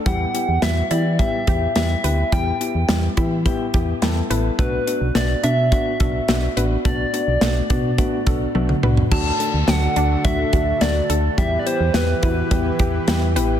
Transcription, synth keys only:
X:1
M:4/4
L:1/8
Q:1/4=106
K:Em
V:1 name="Synth keys"
[B,EG] [B,EG] [B,EF] [B,EG] [B,EG] [B,EG] [B,EG] [B,EG] | [B,EG] [B,EG] [B,EG] [B,EG] [B,EG] [B,EG] [B,EA] [B,EA] | [B,DF] [B,DF] [B,DF] [B,DF] [B,DF] [B,DF] [B,DF] [B,DF] | [B,DF] [B,DF] [B,DF] [B,DF] [B,DF] [B,DF] [B,DF] [B,DF] |
[A,DF] [A,DA] [A,DF] [A,DF] [A,DF] [A,DF] [A,DF] [A,DA] | [B,EG] [B,EG] [B,EG] [B,EF] [B,EG] [B,EG] [B,EG] [B,EG] |]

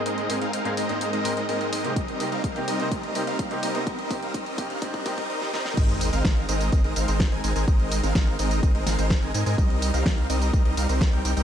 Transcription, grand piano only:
X:1
M:4/4
L:1/16
Q:1/4=126
K:Ab
V:1 name="Grand piano"
[A,,B,CEA]2 [A,,B,CEA] z2 [A,,B,CEA] z [A,,B,CEc]3 [A,,B,CEB] z [A,,B,CEB]3 [C,B,CEG] | z2 [C,B,CEG] z2 [C,B,CEG] z [C,B,CEc] z2 [C,B,CEG] z2 [C,B,CEG] z [C,B,CEc] | z2 [C,B,CEG] z3 [C,B,CEG] z [C,B,CEG] z [C,B,CEG] z4 z | z16 |
z16 | z16 |]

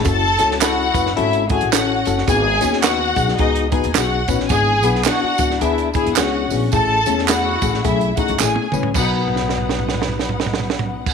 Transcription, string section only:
X:1
M:4/4
L:1/16
Q:"Swing" 1/4=108
K:Bmix
V:1 name="String section"
[Aa]4 [Ff]4 [Ee]2 [Gg]2 [Ff]3 z | [Gg]4 [Ff]4 [Dd]2 [Gg]2 [Ff]3 z | [Gg]4 [Ff]4 [Ee]2 [Gg]2 [Ff]3 z | [Aa]4 [Ff]4 [Ee]2 [Ff]2 [Gg]3 z |
[DBf]16 |]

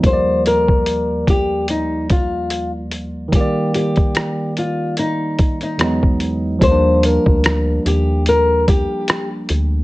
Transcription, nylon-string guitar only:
X:1
M:4/4
L:1/16
Q:"Swing 16ths" 1/4=73
K:Eb
V:1 name="Nylon-string guitar"
c2 B4 G2 E2 F3 z3 | G2 G4 F2 E3 E4- E | c2 B4 G2 B2 G3 z3 |]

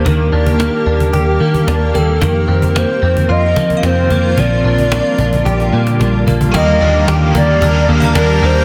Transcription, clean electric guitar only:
X:1
M:4/4
L:1/8
Q:1/4=111
K:Eb
V:1 name="Clean electric guitar"
[E,B,DG] D B, D G B, D B, | E, C B, C F B, C B, | F, D B, D G B, D B, | B, D G B, D B, D B, |]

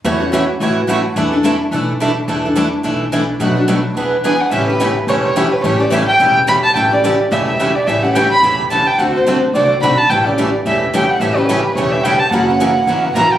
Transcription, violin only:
X:1
M:4/4
L:1/8
Q:"Swing" 1/4=215
K:Amix
V:1 name="Violin"
z8 | z8 | z8 | z6 ^g f |
e B2 z c c2 B | c d e g2 z b a | g d2 z e e2 d | e f g b2 z a g |
f =c2 z d z b a | g d2 z e z g f | e B3 c e g a | f6 ^a g |]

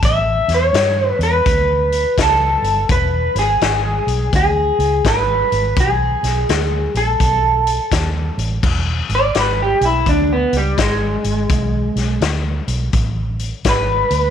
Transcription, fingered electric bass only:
X:1
M:4/4
L:1/8
Q:"Swing" 1/4=84
K:Emix
V:1 name="Fingered electric bass" clef=bass
A,,, E,, =G,, E,, D,,2 C,, =G,,, | E,,, G,,, G,,, B,,, D,, C,, G,,, G,,, | B,,, B,,, D,, ^A,,, B,,,2 ^D,, =A,,, | E,,, G,,, G,,, B,,, D,, C,, G,,, G,,, |
B,,, B,,, D,, B,,, A,,,2 G,,, D,, |]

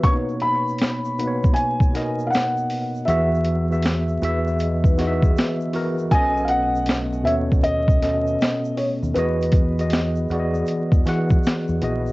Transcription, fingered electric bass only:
X:1
M:4/4
L:1/16
Q:"Swing 16ths" 1/4=79
K:B
V:1 name="Fingered electric bass" clef=bass
z16 | E,,6 E,,6 z4 | B,,,6 D,,6 z3 D,, | E,,6 E,,2 z E,, E,2 z E,, A,,,2 |]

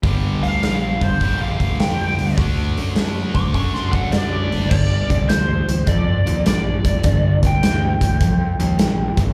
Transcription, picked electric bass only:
X:1
M:4/4
L:1/8
Q:"Swing" 1/4=103
K:Gm
V:1 name="Picked electric bass" clef=bass
G,,, D,, B,,, G,,, B,,, D,, F,, D,, | D,, ^F,, F,, D,, F,,2 F,, ^F,,, | G,,, C,, D,, D,, F,, E,, B,,, F,,, | G,,, C,, D,, D,, F,, E,, B,,, F,,, |]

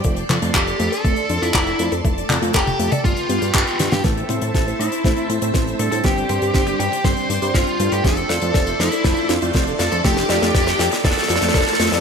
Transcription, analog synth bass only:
X:1
M:4/4
L:1/16
Q:1/4=120
K:Am
V:1 name="Analog synth bass" clef=bass
F,,,2 F,, F,, F,,,2 F,, z F,,, z F,, F,, F,,,2 F,, F,, | F,,,2 F,, F,, F,,,2 F,, z G,,, z G,, G,, G,,, z G,, G,, | A,,,2 A,, A,, A,,,2 A,, z A,,, z A,, A,, A,,,2 A,, A,, | G,,,2 G,, G,, G,,,2 G,, z G,,, z G,, G,, G,,, z G,, G,, |
F,,,2 F,, F,, F,,,2 F,, z F,,, z F,, F,, F,,,2 F,, F,, | F,,,2 F,, F,, F,,,2 F,, z F,,, z F,, F,, F,,, z F,, F,, |]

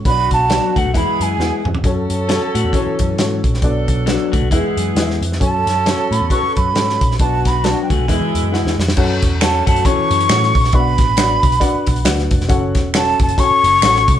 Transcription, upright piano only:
X:1
M:4/4
L:1/8
Q:"Swing" 1/4=135
K:F#m
V:1 name="Upright piano"
[DFBcd]2 [DFBcd]2 [EGBe]2 [EFGBf]2 | [CFAc]2 [CFAc]2 [CFAc]2 [CFAc]2 | [DFBd]2 [DFBd]2 [EGBe]2 [EGB^de]2 | [CFAc]2 [CFAc]2 [CFGAB]2 [CFABc]2 |
[DFBd]2 [DFBd]2 [EGBe]2 [EGBf]2 | [CFAcf]2 [CFAcf]2 [CFAca]2 [CFAcf]2 | [DFBdef]2 [DFBcdf]2 [DFBdf]2 [DFBdf]2 | [CFAcf]2 [CFAcf]2 [CFAcga]2 [CFAcf]2 |]
V:2 name="Upright piano" clef=bass
B,,3 z E,3 z | z8 | B,,3 z E,3 z | z8 |
B,,3 z E,3 z | z8 | B,,3 z4 z | z8 |]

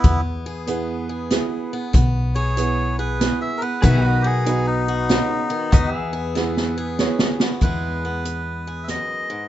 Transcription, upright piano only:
X:1
M:3/4
L:1/8
Q:"Swing" 1/4=95
K:E
V:1 name="Upright piano"
z2 [B,EGB]2 [B,EGB]2 | z2 [B,EGB]2 [B,EGB]2 | z2 [B,DFB]2 [B,DFB]2 | z2 [B,EGB]2 [B,EGc]2 |
z6 |]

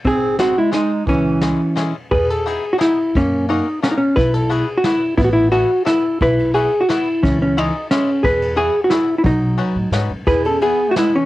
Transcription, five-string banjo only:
X:1
M:3/4
L:1/8
Q:1/4=176
K:C#m
V:1 name="Five-string banjo"
z2 [G,^B,DG] z [G,B,DG] z | z2 [G,CEG] z [G,CEG] z | [K:E] z2 [B,DEG] z [B,DEG] z | z2 [^A,CF^A] z [A,CFA] z |
z2 [B,EFB] z [B,EFB] z | z2 [B,EAB] z [B,EAB] z | z2 [B,EFB] z [B,EFB] z | z2 [G,CEG] z [G,CEG] z |
z2 [B,EFG] z [B,EFG] z | z2 [CDFB] z [CDFB] z | z2 [B,EGB] z [B,EGB] z |]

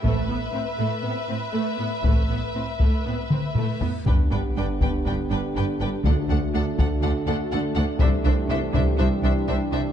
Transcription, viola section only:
X:1
M:4/4
L:1/8
Q:1/4=121
K:G
V:1 name="Viola section"
A, B, C A, B, C A, B, | A, B, C A, B, C A, B, | D D D D D D D D | D D D D D D D D |
D D D D D D D D |]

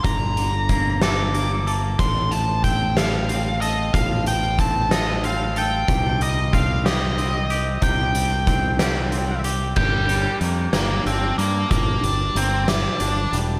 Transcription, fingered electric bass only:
X:1
M:6/8
L:1/8
Q:3/8=62
K:Gm
V:1 name="Fingered electric bass" clef=bass
G,,,6 | A,,,6 | A,,,6 | C,,6 |
C,,6 | G,,,2 F,, G,,, G,,, G,, | G,,, G,,, G,,,2 G,,, =E,,, |]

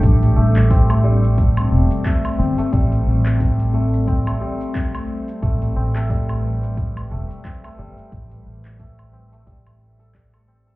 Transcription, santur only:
X:1
M:4/4
L:1/16
Q:"Swing 16ths" 1/4=89
K:Am
V:1 name="Santur"
z2 A, z C A, G, z4 z A, z C A, | G, z4 z A, z C A, G, z4 z | A, z C A, G, z4 z A, z C A, G, z | z4 A, z C A, G, z2 A G, A C A |]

